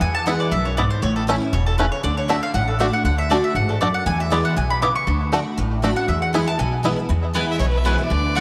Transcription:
0.01 steel-string acoustic guitar E2, upright bass E2, mandolin G#5
0.15 mandolin A5
0.26 steel-string acoustic guitar E3 G#3 B3 E4, five-string banjo B3 E4, mandolin F#5
0.40 mandolin D5
0.51 upright bass B1, steel-string acoustic guitar F#2, mandolin E5
0.65 mandolin C#5
0.77 steel-string acoustic guitar G#2, five-string banjo B3 E4, mandolin D5
0.90 mandolin C5
1.02 upright bass A1, steel-string acoustic guitar A2, mandolin C#5
1.16 mandolin A4
1.27 steel-string acoustic guitar E3 A3 C#4 E4, five-string banjo A3 C#4 E4
1.40 steel-string acoustic guitar C#4 E4
1.53 upright bass E1, steel-string acoustic guitar B2, mandolin C#5
1.66 mandolin A4
1.78 steel-string acoustic guitar C#3, five-string banjo A3 C#4 E4, mandolin B4
1.92 mandolin C#5
2.03 upright bass D2, steel-string acoustic guitar D3, mandolin D5
2.17 mandolin C#5
2.28 steel-string acoustic guitar D3 A3 D4 F#4, five-string banjo A3 D4 F#4, mandolin E5
2.43 mandolin F5
2.54 upright bass A1, steel-string acoustic guitar A2, mandolin F#5
2.68 mandolin A4
2.79 steel-string acoustic guitar D3 A3 D4 F#4, five-string banjo A3 D4 F#4, mandolin D5
2.92 steel-string acoustic guitar D4 F#4, mandolin F#5
3.05 upright bass D2, steel-string acoustic guitar D3, mandolin F#5
3.18 mandolin E5
3.30 steel-string acoustic guitar D3 A3 D4 F#4, five-string banjo A3 D4 F#4, mandolin D5
3.44 mandolin E5
3.55 upright bass A1, steel-string acoustic guitar G#2, mandolin F#5
3.69 mandolin A4
3.81 steel-string acoustic guitar F#2, five-string banjo A3 D4 F#4, mandolin D5
3.94 mandolin F#5
4.06 steel-string acoustic guitar E2, upright bass E2, mandolin G#5
4.20 mandolin E5
4.30 steel-string acoustic guitar E3 G#3 B3 E4, five-string banjo B3 E4, mandolin D5
4.45 mandolin F#5
4.56 upright bass B1, steel-string acoustic guitar B2, mandolin G#5
4.70 mandolin B5
4.82 steel-string acoustic guitar C#3, five-string banjo B3 E4, mandolin D6
4.95 mandolin C#6
5.07 upright bass D2, steel-string acoustic guitar D3
5.32 steel-string acoustic guitar D3 A3 D4 F#4, five-string banjo A3 D4 F#4
5.58 upright bass A1, steel-string acoustic guitar A2
5.82 steel-string acoustic guitar D3 A3 D4 F#4, five-string banjo A3 D4 F#4
5.96 steel-string acoustic guitar D4 F#4, mandolin F#5
6.08 upright bass E2, steel-string acoustic guitar E2, mandolin E5
6.22 mandolin F#5
6.33 steel-string acoustic guitar E3 G#3 B3 E4, five-string banjo B3 E4, mandolin G#5
6.46 steel-string acoustic guitar B3 E4, mandolin A5
6.59 upright bass B1, steel-string acoustic guitar B2, mandolin G#5
6.83 steel-string acoustic guitar E3 G#3 B3 E4, five-string banjo B3 E4
6.96 steel-string acoustic guitar B3 E4
7.09 steel-string acoustic guitar E2, upright bass E2
7.33 steel-string acoustic guitar E3 G#3 B3 E4, mandolin B3 E4 B4 G#5
7.51 fiddle E5
7.59 upright bass B1, steel-string acoustic guitar B2, fiddle C#5
7.68 fiddle B4
7.77 fiddle E5
7.84 steel-string acoustic guitar E3 G#3 B3 E4, mandolin B3 E4 B4 G#5, fiddle C#5
7.94 steel-string acoustic guitar E4, fiddle B4
8.00 steel-string acoustic guitar B3, fiddle D5
8.10 upright bass D2, steel-string acoustic guitar D3
8.35 steel-string acoustic guitar D3 A3 D4, mandolin A3 F#4 D5 F#5

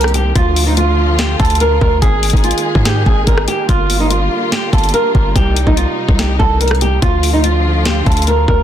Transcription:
Already playing: 808-style bass C2, string section D#3 A#3 C4 G4, nylon-string guitar A#4
0.01 cross-stick, closed hi-hat
0.08 closed hi-hat
0.14 nylon-string guitar G4, closed hi-hat
0.36 808-style bass D2, string section D3 F3 A3 F4, nylon-string guitar F4, kick, closed hi-hat
0.56 open hi-hat
0.67 nylon-string guitar D#4
0.77 nylon-string guitar F4, closed hi-hat
1.19 nylon-string guitar G4, snare, closed hi-hat
1.39 808-style bass D2, nylon-string guitar A4, kick, closed hi-hat
1.45 closed hi-hat
1.50 closed hi-hat
1.55 closed hi-hat
1.60 nylon-string guitar A#4, closed hi-hat
1.81 808-style bass D2, nylon-string guitar A#4, kick
2.02 808-style bass G#1, string section D#3 G#3 A#3 G#4, nylon-string guitar G#4, kick, closed hi-hat
2.23 closed hi-hat, open hi-hat
2.30 808-style bass G#1, nylon-string guitar D#4, kick, closed hi-hat
2.37 closed hi-hat
2.44 nylon-string guitar F4, closed hi-hat
2.51 closed hi-hat
2.58 closed hi-hat
2.75 808-style bass G#2, kick
2.85 nylon-string guitar G4, snare, closed hi-hat
3.06 808-style bass G#1, nylon-string guitar G#4, kick
3.27 808-style bass G#1, nylon-string guitar A#4, kick, closed hi-hat
3.38 cross-stick
3.48 nylon-string guitar G4, closed hi-hat
3.69 808-style bass G1, string section D3 G3 F4, nylon-string guitar F4, kick, closed hi-hat
3.90 open hi-hat
4.00 nylon-string guitar D#4
4.10 nylon-string guitar F4, closed hi-hat
4.52 nylon-string guitar G4, snare, closed hi-hat
4.73 808-style bass G1, nylon-string guitar A4, kick, closed hi-hat
4.78 closed hi-hat
4.84 closed hi-hat
4.89 closed hi-hat
4.94 nylon-string guitar A#4, closed hi-hat
5.15 808-style bass G1, nylon-string guitar A#4, kick
5.35 808-style bass C2, string section C3 D#4, nylon-string guitar G4, kick, closed hi-hat
5.56 closed hi-hat
5.66 808-style bass C2, nylon-string guitar D#4, kick
5.77 nylon-string guitar F4, closed hi-hat
6.09 808-style bass C2, kick
6.19 nylon-string guitar G4, snare, closed hi-hat
6.39 808-style bass C2, nylon-string guitar A4, kick
6.60 nylon-string guitar A#4, closed hi-hat
6.68 cross-stick, closed hi-hat
6.75 closed hi-hat
6.81 nylon-string guitar G4, closed hi-hat
7.02 808-style bass D2, string section D3 F3 A3 F4, nylon-string guitar F4, kick, closed hi-hat
7.23 open hi-hat
7.33 nylon-string guitar D#4
7.44 nylon-string guitar F4, closed hi-hat
7.85 nylon-string guitar G4, snare, closed hi-hat
8.06 808-style bass D2, nylon-string guitar A4, kick, closed hi-hat
8.12 closed hi-hat
8.17 closed hi-hat
8.22 closed hi-hat
8.27 nylon-string guitar A#4, closed hi-hat
8.48 808-style bass D2, nylon-string guitar A#4, kick

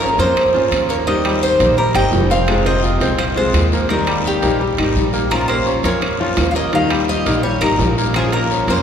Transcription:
Already playing: nylon-string guitar F3 A#3 C#4 F4
0.00 grand piano C#4 C#5, cuban tres A#4, short guiro
0.18 upright bass F2, grand piano A#3 A#4, nylon-string guitar A#3 C#4 F4, cuban tres C5, high timbale, short guiro
0.36 muted nylon-string guitar stroke, high timbale, long guiro, claves
0.54 grand piano F3 F4, nylon-string guitar A#3 C#4 F4
0.71 upright bass D#2, nylon-string guitar F3 A#3 C#4 F4, high timbale, short guiro, claves
0.89 grand piano A#3 A#4, cuban tres C#5, short guiro
1.07 nylon-string guitar D#3 G3 A#3 D#4 G4, grand piano D#3 D#4, cuban tres D#5, high timbale, long guiro
1.25 grand piano G3 G4, high timbale, claves
1.43 cuban tres C5, short guiro
1.60 upright bass A#1, nylon-string guitar G3 A#3 D#4 G4, grand piano A#3 A#4, high timbale, short guiro
1.77 grand piano G3 G4, cuban tres A#4, muted nylon-string guitar stroke, long guiro
1.95 upright bass G1, nylon-string guitar G3 A#3 D#4 G4, grand piano D#4 D#5, cuban tres G5, high timbale, claves
2.12 upright bass F1, nylon-string guitar G3 A#3 D#4 G4, low timbale, short guiro
2.30 grand piano C4 C5, cuban tres F5, short guiro
2.47 nylon-string guitar C3 F3 G#3 C4 F4, grand piano G#3 G#4, high timbale, long guiro, claves
2.66 grand piano C4 C5, cuban tres D#5, high timbale
2.83 grand piano F4 F5, short guiro
3.00 upright bass C2, nylon-string guitar F3 G#3 C4 F4, grand piano C4 C5, high timbale, short guiro
3.18 cuban tres C5, muted nylon-string guitar stroke, high timbale, long guiro, claves
3.36 nylon-string guitar F3 G#3 C4 F4, grand piano G#3 G#4, cuban tres C5
3.53 upright bass D#2, nylon-string guitar F3 G#3 C4 F4, high timbale, low timbale, short guiro, claves
3.72 grand piano A#3 A#4, short guiro
3.89 grand piano D#3 D#4, nylon-string guitar D#3 G3 A#3 D#4 G4, cuban tres A#4, high timbale, long guiro
4.07 grand piano G3 G4, high timbale, claves
4.25 cuban tres G4, short guiro
4.42 upright bass A#1, nylon-string guitar G3 A#3 D#4 G4, grand piano A#3 A#4, high timbale, short guiro
4.59 grand piano G3 G4, muted nylon-string guitar stroke, long guiro
4.78 upright bass G#1, nylon-string guitar G3 A#3 D#4 G4, grand piano D#4 D#5, high timbale, claves
4.95 upright bass A#1, nylon-string guitar G3 A#3 D#4 G4, short guiro
5.13 grand piano A#3 A#4, short guiro
5.30 grand piano F3 F4, nylon-string guitar F3 A#3 C#4 F4, cuban tres A#4, high timbale, long guiro, claves
5.48 grand piano A#3 A#4, cuban tres C5, high timbale
5.66 grand piano C#4 C#5, short guiro
5.83 upright bass F2, grand piano A#3 A#4, nylon-string guitar A#3 C#4 F4, cuban tres C#5, high timbale, short guiro
6.01 muted nylon-string guitar stroke, high timbale, long guiro, claves
6.20 grand piano F3 F4, nylon-string guitar A#3 C#4 F4
6.37 upright bass D#2, nylon-string guitar F3 A#3 C#4 F4, high timbale, low timbale, short guiro, claves
6.51 cuban tres F5, short guiro
6.55 grand piano A#3 A#4, cuban tres D#5
6.72 grand piano D#3 D#4, nylon-string guitar D#3 G3 A#3 D#4 G4, cuban tres F5, high timbale, long guiro
6.90 grand piano G3 G4, high timbale, claves
7.08 cuban tres D#5, short guiro
7.26 upright bass A#1, nylon-string guitar G3 A#3 D#4 G4, grand piano A#3 A#4, high timbale, short guiro
7.43 grand piano G3 G4, cuban tres C#5, muted nylon-string guitar stroke, long guiro
7.61 upright bass G#1, nylon-string guitar G3 A#3 D#4 G4, grand piano D#4 D#5, cuban tres A#4, high timbale, claves
7.79 upright bass A#1, nylon-string guitar G3 A#3 D#4 G4, low timbale, short guiro
7.98 grand piano A#3 A#4, short guiro
8.14 nylon-string guitar F3 A#3 C#4 F4, grand piano F3 F4, cuban tres G#4, high timbale, long guiro, claves
8.33 grand piano A#3 A#4, cuban tres A#4, high timbale
8.51 grand piano C#4 C#5, short guiro
8.67 upright bass F2, grand piano A#3 A#4, nylon-string guitar A#3 C#4 F4, cuban tres C5, high timbale, short guiro

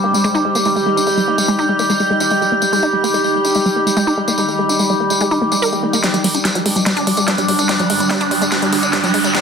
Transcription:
Already playing: synth drone G3 G4, ambient pad D#4 C5 D#5
0.04 synth arpeggio sound A#3
0.14 synth arpeggio sound G#3, tambourine
0.24 synth arpeggio sound G#3, tambourine
0.35 synth arpeggio sound D#4, tambourine
0.45 synth arpeggio sound G#3
0.55 synth arpeggio sound A#3, tambourine
0.65 synth arpeggio sound G#3, tambourine
0.76 synth arpeggio sound G#3, tambourine
0.86 synth arpeggio sound G#3
0.97 synth arpeggio sound D#4, tambourine
1.07 synth arpeggio sound G#3, tambourine
1.17 synth arpeggio sound G3, tambourine
1.28 synth arpeggio sound A#3
1.38 synth arpeggio sound G#3, tambourine
1.48 synth arpeggio sound G#3, tambourine
1.59 synth arpeggio sound D#4, tambourine
1.69 synth arpeggio sound G#3
1.79 synth arpeggio sound A#3, tambourine
1.90 synth arpeggio sound G#3, tambourine
2.00 synth arpeggio sound G#3, tambourine
2.10 synth arpeggio sound G#3
2.20 synth arpeggio sound D#4, tambourine
2.31 synth arpeggio sound G#3, tambourine
2.42 synth arpeggio sound G3, tambourine
2.52 synth arpeggio sound A#3
2.62 synth arpeggio sound G#3, tambourine
2.73 synth arpeggio sound G#3, tambourine
2.83 synth arpeggio sound D#4, tambourine
2.93 synth arpeggio sound G#3
3.04 synth arpeggio sound A#3, tambourine
3.14 synth arpeggio sound G#3, tambourine
3.24 synth arpeggio sound G#3, tambourine
3.35 synth arpeggio sound G#3
3.45 synth arpeggio sound D#4, tambourine
3.54 synth arpeggio sound G#3, tambourine
3.66 synth arpeggio sound G3, tambourine
3.76 synth arpeggio sound A#3
3.86 synth arpeggio sound G#3, tambourine
3.97 synth arpeggio sound G#3, tambourine
4.07 synth arpeggio sound D#4, tambourine
4.17 synth arpeggio sound G#3
4.28 synth arpeggio sound A#3, tambourine
4.38 synth arpeggio sound G#3, tambourine
4.48 synth arpeggio sound G#3, tambourine
4.59 synth arpeggio sound G#3
4.69 synth arpeggio sound D#4, tambourine
4.79 synth arpeggio sound G#3, tambourine
4.90 synth arpeggio sound G3, tambourine
5.00 synth arpeggio sound A#3
5.10 synth arpeggio sound G#3, tambourine
5.21 synth arpeggio sound G#3, tambourine
5.31 synth arpeggio sound D#4, tambourine
5.42 synth arpeggio sound A#3
5.52 synth arpeggio sound G#3, tambourine
5.62 synth arpeggio sound A#4, tambourine
5.73 synth arpeggio sound G#3, tambourine
5.83 synth arpeggio sound A#3
5.93 synth arpeggio sound A#3, tambourine
6.04 synth arpeggio sound G3, ambient pad G3, synth drone D4, snare, closed hi-hat, tambourine, riser
6.14 synth arpeggio sound G3, ambient pad D4, closed hi-hat, tambourine
6.24 synth arpeggio sound G3, ambient pad G5, open hi-hat
6.35 synth arpeggio sound D4, ambient pad D5, closed hi-hat, tambourine
6.45 synth arpeggio sound G3, snare, closed hi-hat, tambourine
6.55 synth arpeggio sound F#3, closed hi-hat, tambourine
6.66 synth arpeggio sound G#3, open hi-hat
6.76 synth arpeggio sound G3, closed hi-hat, tambourine
6.86 synth arpeggio sound G3, snare, closed hi-hat, tambourine
6.97 synth arpeggio sound D4, closed hi-hat, tambourine
7.07 synth arpeggio sound G3, open hi-hat
7.17 synth arpeggio sound G#3, closed hi-hat, tambourine
7.28 synth arpeggio sound G3, snare, closed hi-hat
7.38 synth arpeggio sound G3, closed hi-hat, tambourine
7.48 synth arpeggio sound G3, open hi-hat
7.59 synth arpeggio sound D4, closed hi-hat, tambourine
7.69 synth arpeggio sound G3, snare, closed hi-hat, tambourine
7.79 synth arpeggio sound F#3, closed hi-hat, tambourine
7.90 synth arpeggio sound G#3, open hi-hat
8.00 synth arpeggio sound G3, closed hi-hat, tambourine
8.10 synth arpeggio sound G3, snare, closed hi-hat, tambourine
8.20 synth arpeggio sound D4, closed hi-hat, tambourine
8.31 synth arpeggio sound G3, open hi-hat
8.41 synth arpeggio sound G#3, closed hi-hat, tambourine
8.51 synth arpeggio sound G3, snare, closed hi-hat, tambourine
8.62 synth arpeggio sound G3, closed hi-hat, tambourine
8.73 synth arpeggio sound G3, open hi-hat
8.83 synth arpeggio sound D4, closed hi-hat, tambourine
8.93 synth arpeggio sound G3, snare, closed hi-hat, tambourine
9.04 synth arpeggio sound F#3, closed hi-hat, tambourine
9.14 synth arpeggio sound G#3, open hi-hat
9.24 synth arpeggio sound G3, closed hi-hat, tambourine
9.34 synth arpeggio sound G3, snare, closed hi-hat, tambourine

